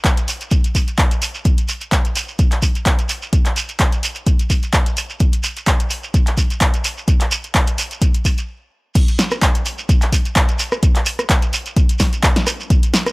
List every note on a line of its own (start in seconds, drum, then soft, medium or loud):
0.04 kick loud
0.04 clap loud
0.04 closed hi-hat medium
0.04 shekere medium
0.17 closed hi-hat soft
0.17 shekere soft
0.28 open hi-hat loud
0.28 shekere medium
0.41 closed hi-hat soft
0.41 shekere soft
0.51 kick loud
0.51 closed hi-hat medium
0.51 shekere medium
0.64 closed hi-hat soft
0.64 shekere soft
0.75 kick medium
0.75 open hi-hat loud
0.75 shekere medium
0.88 closed hi-hat soft
0.88 shekere soft
0.98 kick loud
0.98 clap loud
0.98 closed hi-hat medium
0.98 shekere medium
1.11 closed hi-hat soft
1.11 shekere soft
1.22 open hi-hat loud
1.22 shekere medium
1.35 shekere soft
1.45 kick loud
1.45 closed hi-hat medium
1.45 shekere soft
1.58 closed hi-hat soft
1.58 shekere soft
1.68 open hi-hat loud
1.68 shekere medium
1.81 closed hi-hat soft
1.81 shekere soft
1.92 kick loud
1.92 clap loud
1.92 closed hi-hat medium
1.92 shekere soft
2.05 closed hi-hat soft
2.05 shekere soft
2.15 open hi-hat loud
2.15 shekere medium
2.28 shekere soft
2.39 kick loud
2.39 closed hi-hat medium
2.39 shekere medium
2.51 clap soft
2.51 closed hi-hat soft
2.51 shekere soft
2.62 kick medium
2.62 open hi-hat loud
2.62 shekere medium
2.75 closed hi-hat soft
2.75 shekere soft
2.86 kick loud
2.86 clap loud
2.86 closed hi-hat medium
2.86 shekere medium
2.99 closed hi-hat soft
2.99 shekere soft
3.09 open hi-hat loud
3.09 shekere medium
3.22 shekere soft
3.33 kick loud
3.33 closed hi-hat medium
3.33 shekere soft
3.46 clap soft
3.46 closed hi-hat medium
3.46 shekere soft
3.56 open hi-hat medium
3.56 shekere medium
3.69 closed hi-hat soft
3.69 shekere soft
3.79 kick loud
3.79 clap loud
3.79 closed hi-hat medium
3.79 shekere medium
3.92 closed hi-hat medium
3.92 shekere soft
4.03 open hi-hat loud
4.03 shekere medium
4.15 closed hi-hat soft
4.15 shekere soft
4.27 kick loud
4.27 closed hi-hat medium
4.27 shekere medium
4.39 closed hi-hat medium
4.39 shekere soft
4.50 kick medium
4.50 open hi-hat loud
4.50 shekere medium
4.63 closed hi-hat soft
4.63 shekere soft
4.73 kick loud
4.73 clap loud
4.73 closed hi-hat medium
4.73 shekere soft
4.86 closed hi-hat soft
4.86 shekere soft
4.97 open hi-hat loud
4.97 shekere medium
5.10 shekere soft
5.20 kick loud
5.20 closed hi-hat medium
5.20 shekere soft
5.33 closed hi-hat medium
5.33 shekere soft
5.43 open hi-hat medium
5.43 shekere medium
5.57 closed hi-hat soft
5.57 shekere soft
5.67 kick loud
5.67 clap loud
5.67 closed hi-hat medium
5.67 shekere soft
5.80 closed hi-hat medium
5.80 shekere soft
5.90 open hi-hat loud
5.90 shekere medium
6.03 shekere soft
6.14 kick loud
6.14 closed hi-hat medium
6.14 shekere soft
6.27 clap soft
6.27 closed hi-hat medium
6.27 shekere soft
6.37 kick medium
6.37 open hi-hat medium
6.37 shekere medium
6.50 closed hi-hat soft
6.50 shekere soft
6.61 kick loud
6.61 clap loud
6.61 closed hi-hat medium
6.61 shekere soft
6.74 closed hi-hat medium
6.74 shekere soft
6.84 open hi-hat loud
6.84 shekere medium
6.97 shekere soft
7.08 kick loud
7.08 closed hi-hat medium
7.08 shekere medium
7.20 clap soft
7.20 closed hi-hat medium
7.20 shekere soft
7.31 open hi-hat loud
7.31 shekere loud
7.44 closed hi-hat soft
7.44 shekere soft
7.55 kick loud
7.55 clap loud
7.55 closed hi-hat medium
7.55 shekere soft
7.67 closed hi-hat medium
7.67 shekere soft
7.78 open hi-hat loud
7.78 shekere medium
7.91 closed hi-hat soft
7.91 shekere soft
8.02 kick loud
8.02 closed hi-hat medium
8.02 shekere soft
8.14 closed hi-hat medium
8.14 shekere soft
8.25 kick medium
8.25 open hi-hat medium
8.25 shekere loud
8.38 closed hi-hat soft
8.38 shekere soft
8.95 kick loud
8.95 closed hi-hat medium
8.95 crash loud
8.95 shekere medium
9.08 closed hi-hat medium
9.08 shekere soft
9.19 snare medium
9.19 open hi-hat loud
9.19 shekere medium
9.31 cross-stick medium
9.31 closed hi-hat soft
9.31 shekere soft
9.42 kick loud
9.42 clap loud
9.42 closed hi-hat medium
9.42 shekere soft
9.55 closed hi-hat medium
9.55 shekere soft
9.66 open hi-hat loud
9.66 shekere medium
9.78 shekere soft
9.89 kick loud
9.89 closed hi-hat medium
9.89 shekere medium
10.01 clap soft
10.01 closed hi-hat medium
10.01 shekere soft
10.12 kick medium
10.12 open hi-hat loud
10.12 shekere medium
10.25 closed hi-hat soft
10.25 shekere soft
10.36 kick loud
10.36 clap loud
10.36 closed hi-hat medium
10.36 shekere soft
10.48 closed hi-hat medium
10.48 shekere soft
10.59 open hi-hat loud
10.59 shekere medium
10.72 cross-stick medium
10.72 shekere soft
10.83 kick loud
10.83 closed hi-hat medium
10.83 shekere medium
10.96 clap soft
10.96 closed hi-hat medium
10.96 shekere soft
11.06 open hi-hat loud
11.06 shekere loud
11.19 cross-stick medium
11.19 closed hi-hat soft
11.19 shekere soft
11.30 kick loud
11.30 clap loud
11.30 closed hi-hat medium
11.30 shekere medium
11.42 closed hi-hat medium
11.42 shekere soft
11.53 open hi-hat loud
11.53 shekere medium
11.66 closed hi-hat soft
11.66 shekere soft
11.76 kick loud
11.76 closed hi-hat medium
11.76 shekere soft
11.89 closed hi-hat medium
11.89 shekere soft
11.99 kick medium
11.99 snare medium
11.99 open hi-hat loud
11.99 shekere loud
12.13 closed hi-hat soft
12.13 shekere soft
12.23 kick loud
12.23 clap loud
12.23 closed hi-hat medium
12.23 shekere soft
12.36 snare medium
12.36 closed hi-hat medium
12.36 shekere soft
12.47 cross-stick medium
12.47 open hi-hat loud
12.47 shekere medium
12.60 shekere soft
12.70 kick loud
12.70 closed hi-hat medium
12.70 shekere soft
12.83 closed hi-hat medium
12.83 shekere soft
12.94 snare medium
12.94 open hi-hat loud
12.94 shekere loud
13.06 cross-stick medium
13.06 closed hi-hat soft
13.06 shekere soft